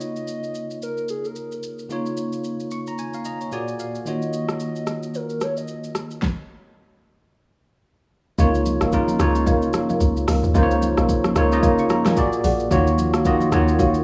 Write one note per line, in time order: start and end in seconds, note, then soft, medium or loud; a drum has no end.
0.00 1.86 C#3 medium
0.00 1.86 A#3 medium
0.00 1.86 D#4 medium
0.00 1.87 F4 medium
0.00 1.87 C#5 medium
0.00 0.78 D#5 loud
0.00 shaker medium
0.16 shaker soft
0.28 shaker medium
0.43 shaker soft
0.55 shaker medium
0.71 shaker medium
0.82 1.08 A#4 medium
0.82 shaker medium
0.97 shaker soft
1.09 1.27 G#4 medium
1.09 shaker medium
1.25 1.64 A#4 medium
1.25 shaker soft
1.36 shaker medium
1.52 shaker medium
1.63 shaker medium
1.79 shaker soft
1.89 3.49 C#3 medium
1.89 3.49 A#3 medium
1.89 3.49 D#4 medium
1.89 3.50 F4 medium
1.89 2.71 C#5 medium
1.89 shaker medium
2.06 shaker medium
2.17 shaker medium
2.33 shaker medium
2.44 shaker medium
2.60 shaker soft
2.71 2.86 C#6 medium
2.71 shaker medium
2.87 2.98 A#5 medium
2.87 shaker medium
2.98 3.13 G#5 medium
2.98 shaker medium
3.14 3.25 F5 medium
3.14 shaker soft
3.25 3.40 D#5 medium
3.25 3.50 A#5 medium
3.25 shaker medium
3.41 3.67 C#5 medium
3.41 shaker soft
3.52 4.06 A#2 medium
3.52 4.05 A#3 medium
3.52 4.06 F#4 medium
3.52 4.07 G#4 medium
3.52 4.07 D5 medium
3.52 3.78 G#5 medium
3.52 shaker medium
3.68 shaker medium
3.79 4.05 F5 medium
3.79 shaker medium
3.95 shaker soft
4.05 6.18 D#3 medium
4.05 6.18 A#3 medium
4.05 6.19 F4 medium
4.05 6.19 F#4 medium
4.05 6.19 C#5 medium
4.05 5.17 D#5 loud
4.05 shaker medium
4.22 shaker soft
4.33 shaker medium
4.49 cross-stick loud
4.49 shaker medium
4.60 shaker medium
4.76 shaker soft
4.87 cross-stick medium
4.87 shaker medium
5.03 shaker medium
5.14 5.44 A#4 loud
5.14 shaker medium
5.30 shaker soft
5.41 5.57 C#5 medium
5.41 cross-stick medium
5.41 shaker medium
5.57 5.93 D#5 medium
5.57 shaker soft
5.68 shaker medium
5.84 shaker medium
5.95 cross-stick loud
5.95 shaker medium
6.11 shaker soft
6.22 kick loud
6.22 snare medium
8.38 8.79 C#2 loud
8.38 8.83 C#3 loud
8.38 8.84 A#3 medium
8.38 8.84 D#4 medium
8.38 8.84 F4 medium
8.38 8.77 A#4 loud
8.38 8.84 C#5 loud
8.38 8.77 D#5 medium
8.38 8.78 F5 loud
8.38 kick loud
8.38 low conga medium
8.38 shaker medium
8.55 shaker medium
8.65 high conga medium
8.65 shaker loud
8.81 9.18 G#1 loud
8.81 9.17 A#4 medium
8.81 9.17 D#5 medium
8.81 9.17 F5 medium
8.81 cross-stick loud
8.81 shaker medium
8.92 9.15 C#3 medium
8.92 9.15 A#3 medium
8.92 9.15 D#4 medium
8.92 9.16 F4 medium
8.92 9.16 A#4 loud
8.92 kick loud
8.92 shaker medium
9.08 high conga medium
9.08 shaker medium
9.19 9.71 C#2 loud
9.19 10.07 C#3 medium
9.19 10.07 A#3 medium
9.19 10.07 D#4 medium
9.19 10.07 F4 medium
9.19 9.45 A#4 medium
9.19 10.08 C#5 loud
9.19 9.45 D#5 medium
9.19 9.45 F5 medium
9.19 cross-stick loud
9.19 high conga medium
9.19 low conga medium
9.19 shaker medium
9.35 shaker medium
9.46 9.85 A#4 medium
9.46 9.86 D#5 medium
9.46 9.86 F5 loud
9.46 kick loud
9.46 low conga medium
9.46 shaker medium
9.62 shaker soft
9.73 cross-stick loud
9.73 high conga medium
9.73 shaker loud
9.89 9.96 A#4 medium
9.89 9.96 D#5 medium
9.89 9.96 F5 medium
9.89 high conga medium
9.89 shaker medium
10.00 10.26 C#2 loud
10.00 kick loud
10.00 shaker medium
10.17 shaker medium
10.27 10.42 C#2 loud
10.27 10.37 A#4 medium
10.27 10.37 D#5 medium
10.27 10.37 F5 medium
10.27 cross-stick loud
10.27 open hi-hat medium
10.27 high conga medium
10.27 shaker loud
10.43 10.54 D#2 loud
10.43 shaker medium
10.54 10.95 C#2 loud
10.54 11.21 C#3 loud
10.54 11.22 A#3 medium
10.54 11.22 D#4 medium
10.54 11.22 F4 medium
10.54 10.93 A#4 loud
10.54 10.63 C5 medium
10.54 10.94 D#5 medium
10.54 10.94 F5 loud
10.54 kick loud
10.54 low conga medium
10.54 shaker medium
10.63 11.25 C#5 loud
10.71 shaker medium
10.82 high conga medium
10.82 shaker medium
10.97 11.34 A#1 medium
10.97 11.33 A#4 medium
10.97 11.33 D#5 medium
10.97 11.33 F5 medium
10.97 cross-stick loud
10.97 shaker medium
11.09 kick loud
11.09 shaker medium
11.24 cross-stick loud
11.24 high conga medium
11.24 shaker medium
11.36 11.61 C#2 loud
11.36 11.48 C#3 medium
11.36 11.49 A#3 medium
11.36 11.49 D#4 medium
11.36 11.49 F4 medium
11.36 11.61 A#4 medium
11.36 11.49 C#5 loud
11.36 11.61 D#5 medium
11.36 11.61 F5 medium
11.36 cross-stick loud
11.36 high conga medium
11.36 low conga medium
11.36 shaker medium
11.52 12.17 C#3 medium
11.52 12.16 A#3 medium
11.52 12.17 D#4 medium
11.52 12.18 F4 medium
11.52 12.18 D#5 loud
11.52 shaker medium
11.63 12.02 A#4 loud
11.63 12.02 D#5 medium
11.63 12.02 F5 loud
11.63 kick loud
11.63 low conga medium
11.63 shaker medium
11.78 11.90 C#6 medium
11.78 shaker soft
11.90 12.05 A#5 medium
11.90 cross-stick loud
11.90 high conga medium
11.90 shaker medium
12.05 12.12 A#4 medium
12.05 12.12 D#5 medium
12.05 12.13 F5 medium
12.05 12.32 G#5 medium
12.05 cross-stick medium
12.05 snare medium
12.05 high conga medium
12.05 shaker medium
12.17 12.62 A#2 loud
12.17 12.62 A#3 medium
12.17 12.62 F#4 medium
12.17 12.62 G#4 medium
12.17 12.63 D5 loud
12.17 kick loud
12.17 shaker medium
12.33 shaker medium
12.44 12.70 A#1 medium
12.44 12.53 G#4 medium
12.44 12.53 D5 medium
12.44 12.54 F#5 medium
12.44 open hi-hat medium
12.44 high conga medium
12.44 shaker loud
12.60 shaker medium
12.71 13.15 D#2 loud
12.71 13.16 D#3 loud
12.71 13.16 A#3 medium
12.71 13.16 F4 medium
12.71 13.10 F#4 loud
12.71 13.16 F#4 medium
12.71 13.10 C#5 medium
12.71 13.17 C#5 loud
12.71 13.10 F5 loud
12.71 kick loud
12.71 low conga medium
12.71 shaker medium
12.87 shaker medium
12.98 high conga medium
12.98 shaker loud
13.14 13.50 C#2 medium
13.14 13.49 F#4 medium
13.14 13.49 C#5 medium
13.14 13.50 F5 medium
13.14 cross-stick loud
13.14 shaker medium
13.25 13.48 D#3 medium
13.25 13.48 A#3 medium
13.25 13.48 F4 medium
13.25 13.48 F#4 medium
13.25 13.48 D#5 loud
13.25 kick loud
13.25 shaker medium
13.40 high conga medium
13.40 shaker medium
13.52 14.03 D#2 loud
13.52 14.04 D#3 loud
13.52 14.04 A#3 medium
13.52 14.04 F4 medium
13.52 13.77 F#4 medium
13.52 14.04 F#4 medium
13.52 13.77 C#5 medium
13.52 14.04 C#5 loud
13.52 13.78 F5 medium
13.52 cross-stick loud
13.52 high conga medium
13.52 low conga medium
13.52 shaker medium
13.68 shaker medium
13.79 14.04 F#4 loud
13.79 14.04 C#5 loud
13.79 14.04 F5 loud
13.79 kick loud
13.79 low conga medium
13.79 shaker medium
13.94 shaker soft